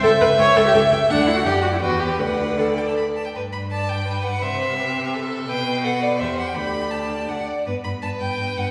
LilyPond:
<<
  \new Staff \with { instrumentName = "Violin" } { \time 3/4 \key g \major \tempo 4 = 166 g''8 g''8 g''8 g''8 g''8 g''8 | fis''2 g''4 | fis''4 fis''8 g''16 a''16 b''8 a''16 g''16 | b'8 b''8 a''8 g''4 fis''8 |
e''2~ e''8 r8 | g''4 fis''8 d''8 e''8 fis''16 g''16 | b''4 a''4 fis''8 d''8 | b'8 b''8 a''8 g''4 fis''8 | }
  \new Staff \with { instrumentName = "Violin" } { \time 3/4 \key g \major e''2. | fis''4 d''4 b'4 | d''2~ d''8 r8 | r4 d''4 b'4 |
c''4 g'4 a'4 | b'2 c''4 | d''2~ d''8 r8 | r4 b'2 | }
  \new Staff \with { instrumentName = "Viola" } { \time 3/4 \key g \major a'8 b'8 cis''8 a'16 g'16 a'8 r8 | d'8 e'16 fis'16 g'8 fis'16 e'16 fis'8 g'8 | b'4 a'4 r4 | b'2.~ |
b'2. | b'4 a'4 g'4 | g'4 g'4 d'8 r8 | b8 b8 b8 b8 b8 b8 | }
  \new Staff \with { instrumentName = "Cello" } { \clef bass \time 3/4 \key g \major cis,8 cis,8 cis,8 cis,8 cis,8 cis,8 | d,4 fis,4 e,4 | d,2~ d,8 r8 | g,2. |
c2. | b,2 e,4 | d,2 d,8 r8 | g,8 g,8 g,8 g,8 g,8 g,8 | }
>>